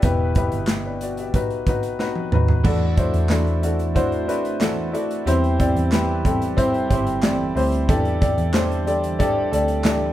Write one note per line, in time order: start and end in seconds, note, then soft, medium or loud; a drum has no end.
0.02 0.49 E1 medium
0.02 0.98 B2 medium
0.02 0.27 B3 medium
0.02 0.28 E4 medium
0.02 0.28 G4 medium
0.02 0.28 B4 medium
0.02 kick loud
0.02 closed hi-hat medium
0.35 0.60 B3 medium
0.35 0.61 E4 medium
0.35 0.61 G4 medium
0.35 0.61 B4 medium
0.35 kick medium
0.35 closed hi-hat medium
0.52 1.34 G1 medium
0.52 closed hi-hat soft
0.67 snare medium
0.67 clap medium
0.67 closed hi-hat medium
0.86 1.01 D4 soft
0.86 1.01 B4 medium
1.01 1.18 F#4 soft
1.01 1.17 D5 medium
1.01 closed hi-hat medium
1.17 1.50 G4 soft
1.17 1.49 E5 medium
1.17 closed hi-hat soft
1.34 2.28 B1 medium
1.34 1.58 B3 medium
1.34 1.59 D#4 medium
1.34 1.59 F#4 medium
1.34 1.59 B4 medium
1.34 kick medium
1.34 closed hi-hat medium
1.50 closed hi-hat soft
1.67 1.91 B3 medium
1.67 1.92 D#4 medium
1.67 1.92 F#4 medium
1.67 1.92 B4 medium
1.67 kick medium
1.67 closed hi-hat medium
1.83 closed hi-hat soft
1.99 2.24 B3 medium
1.99 2.24 D#4 medium
1.99 2.24 F#4 medium
1.99 2.24 B4 medium
1.99 snare soft
2.15 high tom soft
2.32 2.63 D#2 medium
2.32 2.57 B3 medium
2.32 2.57 D#4 medium
2.32 2.57 F#4 medium
2.32 2.57 B4 medium
2.32 mid tom medium
2.48 floor tom medium
2.64 2.97 E2 medium
2.64 3.11 E2 medium
2.64 2.97 E3 medium
2.64 3.60 E3 medium
2.64 2.98 A3 medium
2.64 2.89 D4 medium
2.64 2.97 D4 medium
2.64 2.90 E4 medium
2.64 2.95 E4 medium
2.64 2.96 F#4 medium
2.64 2.90 F#4 medium
2.64 2.90 A4 medium
2.64 kick loud
2.64 crash medium
2.96 3.29 A3 soft
2.96 3.22 D4 medium
2.96 3.30 D4 soft
2.96 3.30 E4 soft
2.96 3.22 E4 medium
2.96 3.30 F#4 soft
2.96 3.22 F#4 medium
2.96 3.23 C5 medium
2.96 kick medium
2.96 closed hi-hat medium
3.13 4.28 E2 medium
3.13 closed hi-hat soft
3.29 3.95 E2 medium
3.29 3.98 E3 medium
3.29 3.93 A3 medium
3.29 3.55 D4 medium
3.29 3.94 D4 medium
3.29 3.55 E4 medium
3.29 3.97 E4 medium
3.29 3.95 F#4 medium
3.29 3.55 F#4 medium
3.29 3.56 A4 medium
3.29 snare medium
3.29 clap medium
3.29 closed hi-hat medium
3.47 closed hi-hat soft
3.62 3.87 D4 medium
3.62 3.87 E4 medium
3.62 3.88 F#4 medium
3.62 3.88 A4 medium
3.62 closed hi-hat medium
3.79 closed hi-hat soft
3.94 4.28 A3 medium
3.94 4.20 D4 medium
3.94 4.29 D4 medium
3.94 4.20 E4 medium
3.94 4.26 E4 medium
3.94 4.20 F#4 medium
3.94 4.28 F#4 medium
3.94 4.20 C5 loud
3.94 kick medium
3.94 closed hi-hat medium
4.12 closed hi-hat soft
4.27 5.23 A1 medium
4.27 4.60 A3 soft
4.27 4.52 D4 medium
4.27 4.60 D4 soft
4.27 4.61 E4 medium
4.27 4.53 E4 medium
4.27 4.53 F#4 medium
4.27 4.61 F#4 soft
4.27 4.53 B4 medium
4.27 closed hi-hat medium
4.45 closed hi-hat soft
4.60 4.94 E2 medium
4.60 4.94 E3 medium
4.60 4.94 A3 medium
4.60 4.85 D4 medium
4.60 4.93 D4 medium
4.60 4.85 E4 medium
4.60 4.91 E4 medium
4.60 4.86 F#4 medium
4.60 4.92 F#4 medium
4.60 4.86 A4 medium
4.60 snare loud
4.60 clap medium
4.60 closed hi-hat medium
4.92 5.26 A3 soft
4.92 5.18 D4 medium
4.92 5.26 D4 medium
4.92 5.26 E4 medium
4.92 5.18 E4 medium
4.92 5.27 F#4 medium
4.92 5.18 F#4 medium
4.92 5.19 A4 medium
4.92 closed hi-hat medium
5.11 closed hi-hat soft
5.26 5.59 E2 medium
5.26 5.72 E2 medium
5.26 5.59 E3 medium
5.26 6.21 E3 medium
5.26 5.60 G3 medium
5.26 5.59 C4 medium
5.26 5.51 C4 loud
5.26 5.51 E4 medium
5.26 5.57 E4 medium
5.26 5.58 G4 medium
5.26 5.52 G4 medium
5.26 5.52 C5 loud
5.26 closed hi-hat medium
5.44 closed hi-hat soft
5.58 5.91 G3 soft
5.58 5.84 C4 medium
5.58 5.91 C4 soft
5.58 5.92 E4 soft
5.58 5.84 E4 medium
5.58 5.92 G4 soft
5.58 5.84 G4 medium
5.58 5.84 D5 medium
5.58 kick medium
5.58 closed hi-hat medium
5.76 6.87 E2 medium
5.76 closed hi-hat soft
5.91 6.57 E2 medium
5.91 6.58 E3 medium
5.91 6.56 G3 medium
5.91 6.56 C4 medium
5.91 6.17 C4 medium
5.91 6.58 E4 medium
5.91 6.17 E4 medium
5.91 6.58 G4 medium
5.91 6.18 G4 medium
5.91 6.18 B4 medium
5.91 snare medium
5.91 clap medium
5.91 closed hi-hat medium
6.25 6.50 C4 medium
6.25 6.50 E4 medium
6.25 6.50 G4 medium
6.25 6.50 A4 medium
6.25 kick medium
6.25 closed hi-hat medium
6.42 closed hi-hat soft
6.56 6.90 G3 medium
6.56 6.82 C4 loud
6.56 6.90 C4 medium
6.56 6.82 E4 medium
6.56 6.88 E4 medium
6.56 6.82 G4 medium
6.56 6.89 G4 medium
6.56 6.82 C5 loud
6.56 kick medium
6.56 closed hi-hat medium
6.74 closed hi-hat soft
6.89 7.52 G1 medium
6.89 7.22 G3 soft
6.89 7.15 C4 medium
6.89 7.22 C4 medium
6.89 7.23 E4 medium
6.89 7.15 E4 medium
6.89 7.23 G4 medium
6.89 7.15 G4 medium
6.89 7.16 C5 medium
6.89 kick medium
6.89 closed hi-hat medium
7.07 closed hi-hat soft
7.22 7.55 E2 medium
7.22 7.56 E3 medium
7.22 7.56 G3 medium
7.22 7.47 C4 medium
7.22 7.56 C4 medium
7.22 7.47 E4 medium
7.22 7.54 E4 medium
7.22 7.48 G4 medium
7.22 7.55 G4 medium
7.22 7.48 D5 medium
7.22 snare loud
7.22 clap medium
7.22 closed hi-hat medium
7.55 7.87 D2 medium
7.55 7.88 G3 soft
7.55 7.80 C4 medium
7.55 7.89 C4 soft
7.55 7.88 E4 medium
7.55 7.80 E4 medium
7.55 7.89 G4 soft
7.55 7.81 G4 medium
7.55 7.81 C5 medium
7.55 open hi-hat medium
7.72 closed hi-hat soft
7.88 8.35 E2 medium
7.88 8.22 D3 medium
7.88 8.21 E3 medium
7.88 8.83 E3 medium
7.88 8.22 G3 medium
7.88 8.13 D4 medium
7.88 8.21 E4 medium
7.88 8.13 G4 medium
7.88 8.14 A4 medium
7.88 8.19 A4 medium
7.88 8.14 D5 loud
7.88 kick loud
7.88 closed hi-hat medium
8.05 closed hi-hat soft
8.21 8.53 G3 soft
8.21 8.46 D4 medium
8.21 8.54 E4 medium
8.21 8.46 G4 medium
8.21 8.54 A4 medium
8.21 8.46 A4 medium
8.21 8.46 D5 medium
8.21 kick medium
8.21 closed hi-hat medium
8.38 9.49 E2 medium
8.38 closed hi-hat soft
8.53 9.18 D3 medium
8.53 9.20 E3 medium
8.53 9.19 G3 medium
8.53 8.78 D4 medium
8.53 9.20 E4 medium
8.53 8.79 G4 medium
8.53 8.79 A4 medium
8.53 9.22 A4 medium
8.53 8.79 C5 medium
8.53 snare medium
8.53 clap medium
8.53 closed hi-hat medium
8.72 closed hi-hat soft
8.86 9.11 D4 medium
8.86 9.11 G4 medium
8.86 9.12 A4 medium
8.86 9.12 D5 medium
8.86 closed hi-hat medium
9.04 closed hi-hat soft
9.19 9.52 D3 medium
9.19 9.53 G3 medium
9.19 9.44 D4 loud
9.19 9.52 E4 medium
9.19 9.44 G4 medium
9.19 9.44 A4 medium
9.19 9.50 A4 medium
9.19 9.44 D5 loud
9.19 kick medium
9.19 closed hi-hat medium
9.52 10.13 D2 medium
9.52 9.84 G3 soft
9.52 9.77 D4 medium
9.52 9.85 E4 soft
9.52 9.77 G4 medium
9.52 9.85 A4 medium
9.52 9.77 A4 medium
9.52 9.77 D5 medium
9.52 closed hi-hat medium
9.68 closed hi-hat soft
9.84 10.13 D3 medium
9.84 10.13 E3 medium
9.84 10.13 G3 medium
9.84 10.10 D4 medium
9.84 10.13 E4 medium
9.84 10.10 G4 medium
9.84 10.13 A4 medium
9.84 10.10 A4 medium
9.84 10.10 D5 medium
9.84 snare loud
9.84 clap medium
9.84 closed hi-hat medium